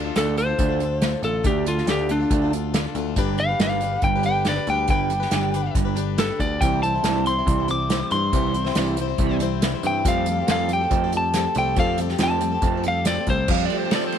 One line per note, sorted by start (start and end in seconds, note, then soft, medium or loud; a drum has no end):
0.00 0.14 D3 medium
0.00 0.14 A3 medium
0.04 0.16 D4 soft
0.04 0.16 F4 soft
0.04 0.15 A4 medium
0.15 0.53 D2 medium
0.15 0.26 D3 medium
0.15 0.36 D3 medium
0.15 0.26 A3 medium
0.15 0.36 A3 medium
0.15 0.27 D4 medium
0.15 0.36 D4 medium
0.15 0.27 F4 medium
0.15 0.26 A4 medium
0.15 0.37 A4 medium
0.15 snare loud
0.15 closed hi-hat medium
0.27 0.35 D4 soft
0.27 0.36 F4 soft
0.27 0.37 A4 soft
0.35 0.57 D3 medium
0.35 0.47 A3 medium
0.35 0.57 A3 medium
0.35 0.47 D4 medium
0.35 0.47 F4 medium
0.35 0.45 A4 medium
0.35 1.21 C5 medium
0.35 closed hi-hat medium
0.46 0.70 D4 soft
0.46 0.69 F4 soft
0.46 0.68 A4 medium
0.59 1.14 D2 medium
0.59 0.79 D3 medium
0.59 0.79 A3 medium
0.59 0.80 D4 medium
0.59 kick loud
0.59 closed hi-hat medium
0.69 0.81 D4 soft
0.69 0.80 F4 medium
0.69 0.80 A4 soft
0.80 1.00 D3 medium
0.80 1.01 A3 medium
0.80 1.00 A3 medium
0.80 1.03 D4 medium
0.80 1.03 F4 medium
0.80 closed hi-hat medium
0.85 1.03 A4 medium
1.01 1.12 D3 medium
1.01 1.22 D3 medium
1.01 1.13 A3 medium
1.01 1.22 A3 medium
1.01 1.13 D4 medium
1.01 1.13 F4 medium
1.01 1.12 A4 medium
1.01 snare loud
1.01 closed hi-hat medium
1.13 1.21 D4 soft
1.13 1.22 F4 soft
1.13 1.23 A4 medium
1.22 1.41 A1 medium
1.22 1.43 D3 medium
1.22 1.43 A3 medium
1.22 1.43 D4 medium
1.22 1.44 F4 medium
1.22 1.45 A4 medium
1.22 1.44 A4 medium
1.22 closed hi-hat medium
1.43 1.81 D2 medium
1.43 1.65 D3 medium
1.43 1.64 A3 medium
1.43 1.65 A3 medium
1.43 1.65 D4 medium
1.43 1.66 D4 medium
1.43 1.66 F4 medium
1.43 1.66 G4 medium
1.43 1.66 A4 medium
1.43 kick loud
1.43 closed hi-hat medium
1.65 1.86 D3 medium
1.65 1.76 A3 medium
1.65 1.86 A3 medium
1.65 1.77 D4 medium
1.65 1.77 F4 medium
1.65 1.88 F4 medium
1.65 1.75 A4 medium
1.65 closed hi-hat medium
1.76 1.87 D4 soft
1.76 1.88 F4 soft
1.76 1.87 A4 medium
1.76 snare soft
1.87 2.24 D2 medium
1.87 1.98 D3 medium
1.87 2.08 D3 medium
1.87 1.98 A3 medium
1.87 2.08 A3 medium
1.87 1.99 D4 medium
1.87 2.09 D4 medium
1.87 1.98 F4 medium
1.87 1.97 A4 medium
1.87 snare medium
1.87 closed hi-hat medium
1.91 2.10 G4 medium
1.98 2.09 D4 soft
1.98 2.10 F4 soft
1.98 2.09 A4 soft
2.08 2.29 D3 medium
2.08 2.19 A3 medium
2.08 2.29 A3 medium
2.08 2.20 D4 medium
2.08 2.52 D4 medium
2.08 2.20 F4 medium
2.08 2.18 A4 medium
2.08 closed hi-hat medium
2.20 2.43 D4 soft
2.20 2.42 F4 soft
2.20 2.41 A4 medium
2.31 2.85 D2 loud
2.31 2.51 D3 medium
2.31 2.51 A3 medium
2.31 2.51 D4 loud
2.31 kick loud
2.31 closed hi-hat medium
2.42 2.51 D4 soft
2.42 2.53 F4 soft
2.42 2.52 A4 soft
2.50 2.72 D3 medium
2.50 2.73 A3 medium
2.50 2.72 A3 medium
2.50 2.74 D4 medium
2.50 2.74 F4 medium
2.50 closed hi-hat medium
2.55 2.74 A4 medium
2.74 2.84 D3 medium
2.74 2.93 D3 medium
2.74 2.84 A3 medium
2.74 2.94 A3 medium
2.74 2.85 D4 medium
2.74 2.85 F4 loud
2.74 2.84 A4 medium
2.74 snare loud
2.74 closed hi-hat medium
2.85 2.95 D4 soft
2.85 2.96 F4 medium
2.85 2.95 A4 medium
2.95 3.13 D2 medium
2.95 3.15 D3 medium
2.95 3.16 A3 medium
2.95 3.15 A3 medium
2.95 3.16 D4 medium
2.95 3.18 F4 medium
2.95 3.18 A4 medium
2.95 closed hi-hat medium
3.16 3.53 G1 loud
3.16 3.37 G2 medium
3.16 3.37 D3 medium
3.16 3.37 G3 medium
3.16 3.37 G3 loud
3.16 3.38 D4 medium
3.16 3.39 G4 medium
3.16 3.39 B4 medium
3.16 kick loud
3.16 closed hi-hat medium
3.38 3.58 G2 medium
3.38 3.58 D3 medium
3.38 3.49 G3 medium
3.38 3.49 D4 medium
3.38 3.49 G4 medium
3.38 3.60 F5 medium
3.38 closed hi-hat medium
3.49 3.61 D4 soft
3.49 3.60 G4 soft
3.49 3.59 B4 medium
3.59 3.96 G1 medium
3.59 3.80 G2 medium
3.59 3.80 D3 medium
3.59 3.80 G3 medium
3.59 3.71 G3 medium
3.59 3.71 D4 medium
3.59 3.71 G4 medium
3.59 3.71 B4 medium
3.59 4.03 F5 medium
3.59 snare loud
3.59 closed hi-hat medium
3.72 3.81 D4 soft
3.72 3.81 G4 soft
3.72 3.82 B4 soft
3.81 4.01 G2 medium
3.81 4.01 D3 medium
3.81 3.91 G3 medium
3.81 3.92 D4 medium
3.81 3.92 G4 medium
3.81 3.91 B4 medium
3.81 closed hi-hat medium
3.93 4.16 D4 soft
3.93 4.15 G4 soft
3.93 4.14 B4 medium
4.02 4.58 G1 loud
4.02 4.23 G2 medium
4.02 4.23 D3 medium
4.02 4.24 G3 loud
4.02 4.24 G5 medium
4.02 kick loud
4.02 closed hi-hat medium
4.16 4.25 D4 soft
4.16 4.26 G4 soft
4.16 4.25 B4 medium
4.23 4.44 G2 medium
4.23 4.44 D3 medium
4.23 4.45 G3 medium
4.23 4.46 D4 medium
4.23 4.46 G5 medium
4.23 closed hi-hat medium
4.28 4.47 G4 medium
4.28 4.47 B4 medium
4.45 4.65 G2 medium
4.45 4.66 D3 medium
4.45 4.57 G3 medium
4.45 4.57 D4 medium
4.45 4.57 G4 medium
4.45 4.54 B4 medium
4.45 4.68 D5 medium
4.45 snare loud
4.45 closed hi-hat medium
4.56 4.68 G4 medium
4.56 4.67 B4 medium
4.60 4.67 D4 soft
4.67 4.86 D2 loud
4.67 4.87 G2 medium
4.67 4.87 D3 medium
4.67 4.88 G3 medium
4.67 4.88 D4 medium
4.67 4.89 G4 medium
4.67 4.90 B4 medium
4.67 4.89 G5 medium
4.67 closed hi-hat medium
4.88 5.26 G1 medium
4.88 5.09 G2 medium
4.88 5.09 D3 loud
4.88 5.09 G3 medium
4.88 5.10 G3 loud
4.88 5.10 D4 medium
4.88 5.11 G4 medium
4.88 5.11 B4 medium
4.88 5.73 G5 medium
4.88 kick loud
4.88 closed hi-hat medium
5.10 5.30 G2 medium
5.10 5.30 D3 medium
5.10 5.21 G3 medium
5.10 5.21 D4 medium
5.10 5.21 G4 medium
5.10 5.19 B4 medium
5.10 closed hi-hat medium
5.20 5.31 D4 soft
5.20 5.32 G4 soft
5.20 5.31 B4 medium
5.20 snare soft
5.31 5.69 G1 medium
5.31 5.52 G2 medium
5.31 5.52 D3 medium
5.31 5.51 G3 medium
5.31 5.53 G3 medium
5.31 5.53 D4 medium
5.31 5.54 G4 medium
5.31 5.54 B4 medium
5.31 snare loud
5.31 closed hi-hat medium
5.52 5.73 G2 medium
5.52 5.73 D3 medium
5.52 5.63 G3 medium
5.52 5.64 D4 medium
5.52 5.64 G4 medium
5.52 closed hi-hat medium
5.56 5.61 B4 medium
5.63 5.86 D4 medium
5.63 5.85 G4 soft
5.63 5.84 B4 medium
5.75 6.30 G1 loud
5.75 5.96 G2 medium
5.75 5.96 D3 medium
5.75 5.96 G3 medium
5.75 kick loud
5.75 closed hi-hat medium
5.85 5.95 D4 medium
5.85 5.96 G4 soft
5.85 5.96 B4 medium
5.95 6.16 G2 medium
5.95 6.16 D3 medium
5.95 6.17 G3 medium
5.95 6.17 D4 medium
5.95 6.18 G4 medium
5.95 6.19 B4 medium
5.95 closed hi-hat medium
6.18 6.38 G2 medium
6.18 6.38 D3 medium
6.18 6.28 G3 medium
6.18 6.29 D4 medium
6.18 6.29 G4 medium
6.18 6.39 A4 medium
6.18 6.28 B4 medium
6.18 snare loud
6.18 closed hi-hat medium
6.29 6.40 D4 soft
6.29 6.40 G4 soft
6.29 6.39 B4 medium
6.39 6.58 D2 medium
6.39 6.59 G2 medium
6.39 6.59 D3 medium
6.39 6.61 G3 medium
6.39 6.62 D4 medium
6.39 6.63 G4 medium
6.39 6.61 D5 medium
6.39 kick medium
6.39 closed hi-hat medium
6.44 6.63 B4 medium
6.61 6.98 C2 loud
6.61 6.81 C3 medium
6.61 6.83 C3 medium
6.61 6.81 E3 loud
6.61 6.83 E3 medium
6.61 6.81 G3 medium
6.61 6.82 C4 medium
6.61 6.83 E4 medium
6.61 6.84 C5 medium
6.61 6.82 G5 medium
6.61 kick loud
6.61 closed hi-hat loud
6.82 7.02 C3 medium
6.82 7.02 E3 medium
6.82 6.93 G3 medium
6.82 6.93 C4 medium
6.82 6.94 E4 medium
6.82 6.93 C5 medium
6.82 7.24 A5 medium
6.82 closed hi-hat medium
6.94 7.05 G3 soft
6.94 7.06 C4 soft
6.94 7.05 E4 soft
6.94 7.04 C5 medium
7.03 7.41 C2 medium
7.03 7.24 C3 medium
7.03 7.15 C3 medium
7.03 7.24 E3 medium
7.03 7.15 E3 medium
7.03 7.24 G3 medium
7.03 7.16 G3 medium
7.03 snare loud
7.03 closed hi-hat loud
7.07 7.16 C4 medium
7.07 7.15 E4 medium
7.07 7.14 C5 medium
7.15 7.24 G3 soft
7.15 7.25 C4 soft
7.15 7.26 E4 soft
7.15 7.26 C5 soft
7.25 7.44 C3 medium
7.25 7.45 E3 medium
7.25 7.36 G3 medium
7.25 7.37 C4 medium
7.25 7.37 E4 medium
7.25 7.68 C6 medium
7.25 closed hi-hat medium
7.29 7.34 C5 medium
7.36 7.58 C4 soft
7.36 7.59 E4 medium
7.36 7.56 C5 soft
7.40 7.59 G3 soft
7.46 8.02 C2 loud
7.46 7.67 C3 medium
7.46 7.67 E3 loud
7.46 7.67 G3 loud
7.46 kick loud
7.46 closed hi-hat medium
7.58 7.66 G3 soft
7.58 7.67 C4 soft
7.58 7.68 E4 soft
7.58 7.68 C5 medium
7.68 7.88 C3 medium
7.68 7.88 E3 medium
7.68 7.89 G3 medium
7.68 7.90 C4 medium
7.68 7.90 E4 medium
7.68 7.91 C5 medium
7.68 8.11 D6 medium
7.68 closed hi-hat medium
7.89 8.00 C3 medium
7.89 8.09 C3 medium
7.89 8.09 E3 medium
7.89 8.01 E3 medium
7.89 8.01 G3 medium
7.89 8.01 C4 medium
7.89 8.00 E4 medium
7.89 7.99 C5 medium
7.89 snare loud
7.89 closed hi-hat medium
8.00 8.11 G3 soft
8.00 8.12 C4 soft
8.00 8.12 E4 soft
8.00 8.11 C5 medium
8.11 8.30 G2 medium
8.11 8.30 C3 medium
8.11 8.31 E3 medium
8.11 8.32 G3 medium
8.11 8.33 C4 medium
8.11 8.34 E4 medium
8.11 9.37 C6 loud
8.11 closed hi-hat medium
8.15 8.34 C5 medium
8.32 8.70 C2 medium
8.32 8.53 C3 medium
8.32 8.54 C3 medium
8.32 8.53 E3 medium
8.32 8.55 E3 medium
8.32 8.53 G3 medium
8.32 8.54 C4 medium
8.32 8.55 E4 medium
8.32 8.56 C5 medium
8.32 kick loud
8.32 closed hi-hat medium
8.54 8.74 C3 medium
8.54 8.74 E3 medium
8.54 8.65 G3 medium
8.54 8.65 C4 medium
8.54 8.65 E4 medium
8.54 8.63 C5 medium
8.54 closed hi-hat medium
8.64 8.76 G3 soft
8.64 8.76 C4 medium
8.64 8.76 E4 medium
8.64 8.76 C5 medium
8.64 snare soft
8.75 9.13 C2 medium
8.75 8.96 C3 medium
8.75 8.97 C3 medium
8.75 8.96 E3 medium
8.75 8.98 E3 medium
8.75 8.97 G3 medium
8.75 8.96 G3 loud
8.75 8.98 C4 medium
8.75 8.98 E4 medium
8.75 8.99 C5 loud
8.75 snare loud
8.75 closed hi-hat medium
8.97 9.17 C3 medium
8.97 9.17 E3 medium
8.97 9.08 G3 medium
8.97 9.09 C4 medium
8.97 9.08 E4 medium
8.97 closed hi-hat medium
9.01 9.07 C5 medium
9.08 9.31 G3 soft
9.08 9.30 C4 medium
9.08 9.29 E4 medium
9.08 9.28 C5 medium
9.18 9.74 C2 loud
9.18 9.39 C3 medium
9.18 9.40 E3 medium
9.18 9.40 G3 loud
9.18 kick loud
9.18 closed hi-hat medium
9.29 9.38 G3 medium
9.29 9.40 C4 medium
9.29 9.41 E4 medium
9.29 9.40 C5 medium
9.39 9.60 C3 medium
9.39 9.61 E3 medium
9.39 9.61 G3 medium
9.39 9.62 C4 medium
9.39 9.63 E4 medium
9.39 9.63 C5 medium
9.39 closed hi-hat medium
9.62 9.73 C3 medium
9.62 9.82 C3 medium
9.62 9.73 E3 medium
9.62 9.82 E3 medium
9.62 9.73 G3 medium
9.62 9.73 C4 medium
9.62 9.73 E4 loud
9.62 9.73 C5 medium
9.62 snare loud
9.62 closed hi-hat loud
9.74 9.82 G3 soft
9.74 9.83 C4 soft
9.74 9.84 E4 soft
9.74 9.84 C5 medium
9.83 10.02 G2 medium
9.83 10.03 C3 medium
9.83 10.03 E3 medium
9.83 10.04 G3 medium
9.83 10.05 C4 medium
9.83 10.06 E4 medium
9.83 10.06 C5 medium
9.83 10.06 G5 loud
9.83 closed hi-hat medium
10.05 10.42 F2 loud
10.05 10.25 F3 medium
10.05 10.27 F3 medium
10.05 10.27 G3 medium
10.05 10.25 A3 medium
10.05 10.25 C4 medium
10.05 10.27 C4 medium
10.05 10.27 G4 medium
10.05 10.28 A4 medium
10.05 10.48 F5 medium
10.05 kick loud
10.05 closed hi-hat loud
10.26 10.46 F3 medium
10.26 10.38 G3 medium
10.26 10.46 A3 medium
10.26 10.39 C4 medium
10.26 closed hi-hat medium
10.31 10.39 G4 medium
10.31 10.37 A4 medium
10.38 10.48 C4 soft
10.38 10.49 G4 soft
10.38 10.49 A4 medium
10.47 10.85 F2 medium
10.47 10.68 F3 medium
10.47 10.70 F3 medium
10.47 10.70 G3 medium
10.47 10.68 A3 medium
10.47 10.68 C4 loud
10.47 10.70 C4 medium
10.47 10.71 G4 medium
10.47 snare loud
10.47 closed hi-hat loud
10.51 10.71 A4 loud
10.51 10.71 F5 loud
10.69 10.88 F3 medium
10.69 10.81 G3 medium
10.69 10.89 A3 medium
10.69 10.81 C4 medium
10.69 closed hi-hat medium
10.73 10.82 G4 medium
10.73 10.80 A4 medium
10.73 11.13 G5 medium
10.81 11.03 C4 soft
10.81 11.03 G4 medium
10.81 11.02 A4 medium
10.90 11.46 F2 loud
10.90 11.11 F3 medium
10.90 11.11 A3 loud
10.90 11.11 C4 loud
10.90 kick loud
10.90 closed hi-hat medium
11.04 11.13 C4 soft
11.04 11.14 G4 soft
11.04 11.13 A4 medium
11.12 11.32 F3 medium
11.12 11.34 G3 medium
11.12 11.32 A3 medium
11.12 11.35 C4 medium
11.12 11.36 G4 medium
11.12 closed hi-hat medium
11.17 11.36 A4 medium
11.17 11.56 A5 medium
11.34 11.53 F3 medium
11.34 11.45 F3 medium
11.34 11.45 G3 medium
11.34 11.54 A3 medium
11.34 11.46 C4 medium
11.34 11.45 G4 medium
11.34 snare loud
11.34 closed hi-hat loud
11.38 11.44 A4 medium
11.46 11.56 C4 soft
11.46 11.56 G4 soft
11.55 11.74 C2 loud
11.55 11.75 F3 medium
11.55 11.77 G3 medium
11.55 11.75 A3 medium
11.55 11.77 C4 medium
11.55 11.78 G4 medium
11.55 11.78 A4 medium
11.55 11.78 G5 medium
11.55 closed hi-hat medium
11.76 12.14 F2 loud
11.76 11.96 F3 medium
11.76 11.99 F3 medium
11.76 11.97 G3 medium
11.76 11.97 A3 medium
11.76 11.97 C4 loud
11.76 11.98 C4 medium
11.76 11.99 F5 loud
11.76 kick loud
11.76 closed hi-hat medium
11.80 12.00 G4 medium
11.80 12.00 A4 medium
11.98 12.18 F3 medium
11.98 12.09 G3 medium
11.98 12.18 A3 medium
11.98 12.09 C4 medium
11.98 12.10 G4 medium
11.98 12.09 A4 medium
11.98 closed hi-hat medium
12.09 12.21 G4 medium
12.09 12.21 A4 medium
12.09 snare soft
12.13 12.20 C4 soft
12.18 12.57 F2 medium
12.18 12.39 F3 medium
12.18 12.41 F3 medium
12.18 12.40 G3 medium
12.18 12.40 A3 loud
12.18 12.40 C4 loud
12.18 12.41 C4 medium
12.18 12.42 G4 medium
12.18 12.42 A4 medium
12.18 snare loud
12.18 closed hi-hat medium
12.23 12.84 A5 loud
12.41 12.60 F3 medium
12.41 12.52 G3 medium
12.41 12.61 A3 medium
12.41 12.53 C4 medium
12.41 12.53 G4 medium
12.41 12.51 A4 medium
12.41 closed hi-hat medium
12.52 12.75 C4 soft
12.52 12.74 G4 medium
12.52 12.72 A4 medium
12.62 13.17 F2 loud
12.62 12.83 F3 medium
12.62 12.83 A3 medium
12.62 12.83 C4 loud
12.62 kick loud
12.62 closed hi-hat medium
12.74 12.85 C4 soft
12.74 12.85 G4 soft
12.74 12.84 A4 soft
12.83 13.04 F3 medium
12.83 13.06 G3 medium
12.83 13.04 A3 medium
12.83 13.06 C4 medium
12.83 13.07 G4 medium
12.83 closed hi-hat medium
12.88 13.07 A4 medium
12.88 13.07 F5 medium
13.05 13.25 F3 medium
13.05 13.17 F3 medium
13.05 13.17 G3 medium
13.05 13.25 A3 medium
13.05 13.17 C4 medium
13.05 13.27 D5 loud
13.05 snare loud
13.05 closed hi-hat medium
13.09 13.18 G4 medium
13.09 13.17 A4 medium
13.18 13.28 C4 soft
13.18 13.28 G4 medium
13.18 13.28 A4 medium
13.27 13.45 C2 loud
13.27 13.46 F3 medium
13.27 13.49 G3 medium
13.27 13.47 A3 medium
13.27 13.50 C4 medium
13.27 13.50 G4 medium
13.27 13.49 C5 loud
13.27 kick medium
13.27 closed hi-hat medium
13.32 13.51 A4 medium
13.48 13.67 F2 loud
13.48 13.91 F3 medium
13.48 13.71 F3 medium
13.48 13.71 G3 medium
13.48 13.71 C4 medium
13.48 13.64 F5 medium
13.48 kick loud
13.48 crash loud
13.52 13.72 G4 medium
13.52 13.72 A4 medium
13.65 13.78 D5 medium
13.70 13.82 G3 medium
13.70 14.12 A3 medium
13.70 13.82 C4 medium
13.70 ride medium
13.74 13.83 G4 medium
13.74 13.82 A4 medium
13.80 13.93 A4 medium
13.80 13.92 C5 medium
13.85 13.94 C4 soft
13.85 13.94 G4 medium
13.91 14.18 F3 medium
13.91 14.18 G3 medium
13.91 14.18 C4 medium
13.91 14.06 D5 medium
13.91 snare loud
13.91 ride loud
13.95 14.18 G4 medium
13.95 14.18 A4 loud
14.07 14.18 C5 medium
14.12 14.18 A3 medium
14.12 ride medium